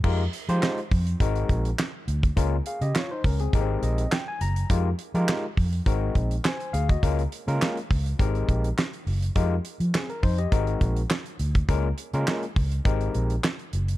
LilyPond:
<<
  \new Staff \with { instrumentName = "Tine electric piano" } { \time 4/4 \key aes \major \tempo 4 = 103 << { r1 | r8 <aes' f''>16 <g' ees''>16 <f' des''>16 <ees' c''>16 <des' bes'>16 <c' aes'>8 r16 ees''8 g''16 aes''16 bes''8 | r2. <c'' aes''>8 <aes' f''>16 <ges' ees''>16~ | <ges' ees''>16 r2. r8. |
r4 <c' aes'>16 bes'16 <ees' c''>16 <g' ees''>8 r4. r16 | r1 | } \\ { <aes ees' f' g' bes'>16 r8 <aes ees' f' g' c''>8 r8. <aes c' ees' ges' bes'>8. r4 r16 | <aes bes des' f' bes'>16 r4. r16 <aes bes c' ees' g' bes'>8. r4 r16 | <aes ees' f' g' bes'>16 r8 <aes ees' f' g' bes'>8 r8. <aes c' ees' ges' bes'>8. r4 r16 | <aes bes des' f' bes'>16 r8 <aes bes des' f' bes'>8 r8. <aes c' ees' g' bes'>8. r4 r16 |
<aes ees' f' g' bes'>16 r4. r16 <aes c' ees' ges' bes'>8. r4 r16 | <aes bes des' f' bes'>16 r8 <aes bes des' f' bes'>8 r8. <aes c' ees' g' bes'>8. r4 r16 | } >> }
  \new Staff \with { instrumentName = "Fingered electric bass" } { \clef bass \time 4/4 \key aes \major f,8 r16 f16 r8 f,8 aes,,8 bes,,8 r8 d,8 | des,8 r16 des16 r8 des,8 aes,,8 bes,,8 r8 ges,,8 | f,8 r16 f16 r8 f,8 aes,,8 bes,,8 r8 d,8 | des,8 r16 des16 r8 des,8 aes,,8 bes,,8 r8 ges,,8 |
f,8 r16 f16 r8 f,8 aes,,8 bes,,8 r8 d,8 | des,8 r16 des16 r8 des,8 aes,,8 bes,,8 r8 ges,,8 | }
  \new DrumStaff \with { instrumentName = "Drums" } \drummode { \time 4/4 <cymc bd>8 hh16 hh16 <hc sn>16 hh16 <hho bd>16 hh16 <hh bd>16 hh16 <hh bd>16 hh16 <hc sn>8 hh16 <hh bd>16 | <hh bd>8 hh16 hh16 <hc sn>8 <hho bd>16 hh16 <hh bd>8 hh16 hh16 <hc sn>8 hh16 hh16 | <hh bd>8 hh16 hh16 <hc sn>8 <hho bd>16 hh16 <hh bd>8 <hh bd>16 hh16 <hc sn>16 hh16 hh16 <hh bd>16 | <hh bd>16 hh16 hh16 hh16 <hc sn>16 hh16 <hho bd>16 hh16 <hh bd>16 hh16 <hh bd>16 hh16 <hc sn>16 hh16 hho16 hh16 |
<hh bd>8 hh16 hh16 <hc sn>16 hh16 <hho bd>16 hh16 <hh bd>16 hh16 <hh bd>16 hh16 <hc sn>16 hh16 hh16 <hh bd>16 | <hh bd>8 hh16 hh16 <hc sn>16 hh16 <hho bd>16 hh16 <hh bd>16 hh16 hh16 hh16 <hc sn>16 hh16 hh16 hh16 | }
>>